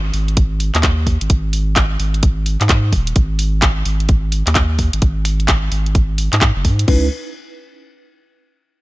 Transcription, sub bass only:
0.00 0.11 G#1 medium
0.14 0.71 G#1 medium
0.75 1.18 D#2 medium
1.21 1.29 G#1 medium
1.30 1.98 G#1 medium
2.00 2.57 G#1 medium
2.61 2.94 G#2 medium
2.93 3.13 D#1 medium
3.16 3.84 G#1 loud
3.86 4.43 G#1 medium
4.47 4.90 D#2 loud
4.93 5.01 G#1 medium
5.02 5.70 G#1 loud
5.72 6.29 G#1 medium
6.33 6.52 G#2 medium
6.56 6.66 F#1 loud
6.65 6.85 G#2 medium
6.88 7.10 C#2 medium

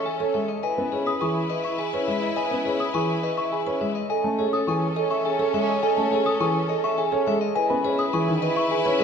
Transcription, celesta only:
0.00 0.10 C#6 medium
0.06 0.25 G#5 medium
0.63 0.82 G#5 medium
1.07 1.26 D#6 medium
1.21 1.40 C#6 medium
1.65 1.83 C#6 medium
1.79 1.98 G#5 medium
2.36 2.55 G#5 medium
2.80 2.99 D#6 medium
2.94 3.13 C#6 medium
3.38 3.56 C#6 medium
3.52 3.71 G#5 medium
4.10 4.29 G#5 medium
4.24 4.43 A5 medium
4.53 4.72 D#6 medium
4.67 4.86 C#6 medium
5.11 5.29 C#6 medium
5.25 5.44 G#5 medium
5.83 6.02 G#5 medium
5.97 6.16 A5 medium
6.26 6.45 D#6 medium
6.41 6.59 C#6 medium
6.84 7.03 C#6 medium
6.98 7.17 G#5 medium
7.55 7.74 G#5 medium
7.70 7.89 B5 medium
7.99 8.18 D#6 medium
8.13 8.32 C#6 medium
8.57 8.76 C#6 medium
8.71 8.90 G#5 medium

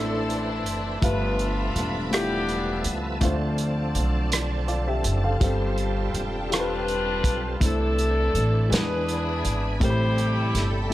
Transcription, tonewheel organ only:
0.00 0.99 E3 soft
0.00 0.99 C4 soft
0.00 0.99 D4 soft
0.00 1.02 A4 medium
1.03 3.18 F3 medium
1.03 1.09 A#3 soft
1.03 3.18 A4 medium
1.03 3.18 E5 soft
1.10 3.22 B3 soft
3.20 3.28 E3 soft
3.20 5.37 C4 medium
3.20 5.37 D4 medium
3.20 5.37 A4 medium
3.27 5.40 F3 medium
5.40 7.57 G3 medium
5.40 7.57 C4 medium
5.40 7.57 F4 medium
5.40 7.57 A4 medium
7.60 8.69 E3 medium
7.60 8.71 C4 soft
7.60 8.69 D4 soft
7.60 8.71 A4 medium
8.70 9.80 E3 medium
8.70 9.80 B3 medium
8.70 9.80 D4 soft
8.70 9.81 G#4 medium
9.81 10.94 C3 soft
9.81 10.94 G3 medium
9.81 10.94 A3 soft
9.81 10.94 A4 medium

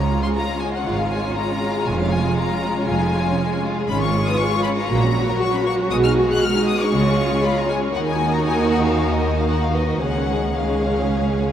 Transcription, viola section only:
0.00 3.85 G#3 medium
0.00 3.85 F4 medium
3.89 4.87 G#3 medium
3.89 4.87 F4 medium
4.89 5.89 F#3 medium
4.89 6.92 F#4 medium
5.91 7.94 G#3 medium
6.93 7.94 F4 medium
7.93 9.44 D#3 medium
7.93 9.44 D#4 medium
9.49 10.00 D#3 soft
9.49 10.01 D#4 soft
10.01 10.53 G#3 soft
10.01 10.53 C#4 soft
10.54 11.52 G#3 soft
10.54 11.52 C#4 medium

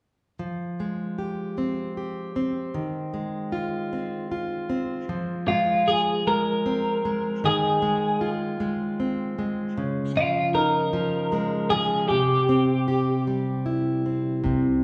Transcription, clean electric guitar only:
5.48 5.89 F4 medium
5.88 6.24 G#4 medium
6.27 7.45 A#4 medium
7.46 8.29 G#4 medium
10.17 10.57 F4 medium
10.55 11.67 A#4 medium
11.70 12.08 G#4 medium
12.09 13.22 G4 medium

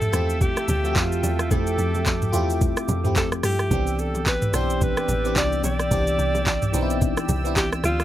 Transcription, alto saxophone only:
0.00 0.43 A4 loud
0.42 0.68 G4 loud
0.69 0.98 G4 loud
0.96 1.39 F4 medium
1.40 1.50 F4 medium
1.51 2.57 A4 loud
3.17 3.29 A4 medium
3.45 4.01 G4 loud
4.00 4.27 A4 medium
4.28 4.57 B4 loud
4.55 4.84 C5 loud
4.83 5.37 B4 loud
5.38 5.63 D5 loud
5.65 7.26 D5 loud
7.57 7.70 G4 loud
7.85 8.04 F4 loud

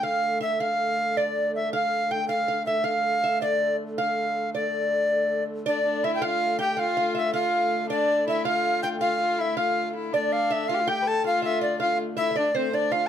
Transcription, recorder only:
0.03 0.41 F5 medium
0.42 0.62 E5 medium
0.60 1.19 F5 medium
1.17 1.54 D5 medium
1.55 1.72 E5 medium
1.74 2.13 F5 medium
2.11 2.27 G5 medium
2.28 2.63 F5 medium
2.66 2.86 E5 medium
2.84 3.41 F5 medium
3.42 3.76 D5 medium
3.98 4.50 F5 medium
4.54 5.44 D5 medium
5.68 6.06 D5 medium
6.04 6.14 E5 medium
6.15 6.26 G5 medium
6.25 6.60 F5 medium
6.60 6.81 G5 medium
6.79 7.16 F5 medium
7.17 7.33 E5 medium
7.34 7.86 F5 medium
7.91 8.25 D5 medium
8.29 8.45 E5 medium
8.45 8.80 F5 medium
8.83 8.89 G5 loud
9.01 9.42 F5 medium
9.41 9.57 E5 medium
9.58 9.89 F5 medium
10.14 10.34 D5 medium
10.32 10.53 F5 loud
10.52 10.70 E5 medium
10.68 10.90 F5 medium
10.88 11.09 G5 medium
11.07 11.25 A5 loud
11.26 11.43 F5 medium
11.44 11.61 E5 medium
11.62 11.79 D5 medium
11.79 11.97 F5 loud
12.17 12.38 E5 loud
12.37 12.57 D5 medium
12.56 12.76 C5 medium
12.74 12.94 D5 medium
12.92 13.08 F5 medium

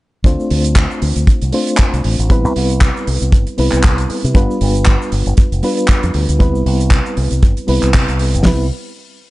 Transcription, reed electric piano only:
0.24 1.50 A3 medium
0.24 1.50 C4 medium
0.24 1.51 D4 medium
0.24 1.51 F4 medium
0.24 1.51 C5 loud
1.52 2.27 A3 medium
1.52 2.27 C4 medium
1.52 2.28 D4 medium
1.52 2.28 F4 medium
1.52 2.28 C5 medium
2.29 3.55 G3 medium
2.29 3.56 B3 medium
2.29 3.56 C4 medium
2.29 3.56 E4 medium
2.29 3.56 B4 loud
3.57 4.32 G3 medium
3.57 4.32 B3 medium
3.57 4.33 C4 medium
3.57 4.33 E4 medium
3.57 4.33 B4 medium
4.35 5.60 G3 medium
4.35 5.61 B3 medium
4.35 5.61 D4 medium
4.35 5.61 F4 medium
4.35 5.62 B4 loud
5.63 6.37 G3 medium
5.63 6.38 B3 medium
5.63 6.38 D4 medium
5.63 6.38 F4 medium
5.63 6.38 B4 medium
6.39 7.65 G3 medium
6.39 7.66 B3 medium
6.39 7.66 C4 medium
6.39 7.66 E4 medium
6.39 7.66 B4 loud
7.67 8.42 G3 medium
7.67 8.42 B3 medium
7.67 8.43 C4 medium
7.67 8.43 E4 medium
7.67 8.43 B4 medium
8.44 8.64 G3 medium
8.44 8.65 B3 medium
8.44 8.65 C4 medium
8.44 8.66 E4 medium
8.44 8.66 B4 loud

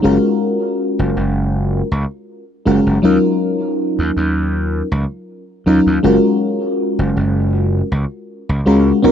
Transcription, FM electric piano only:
0.02 1.86 G#3 medium
0.02 1.87 C#4 medium
0.02 1.87 F4 medium
0.02 1.87 F#4 medium
0.02 1.88 A#4 loud
2.65 2.99 G#3 medium
2.65 2.99 C#4 medium
2.65 3.00 F4 medium
2.65 3.00 F#4 medium
2.65 3.00 A#4 medium
3.02 4.86 F#3 medium
3.02 4.87 C#4 medium
3.02 4.87 D#4 medium
3.02 4.87 F4 medium
3.02 4.88 A#4 loud
5.66 6.00 F#3 medium
5.66 6.00 C#4 medium
5.66 6.00 D#4 medium
5.66 6.00 F4 medium
5.66 6.00 A#4 medium
6.03 7.87 G#3 medium
6.03 7.87 C#4 medium
6.03 7.88 F4 medium
6.03 7.88 F#4 medium
6.03 7.88 A#4 loud
8.66 8.99 G#3 medium
8.66 9.00 C#4 medium
8.66 9.00 F4 medium
8.66 9.00 F#4 medium
8.66 9.00 A#4 medium
9.02 9.12 B3 loud
9.02 9.12 C#4 medium
9.02 9.12 D#4 medium
9.02 9.12 F#4 medium
9.02 9.12 A#4 loud

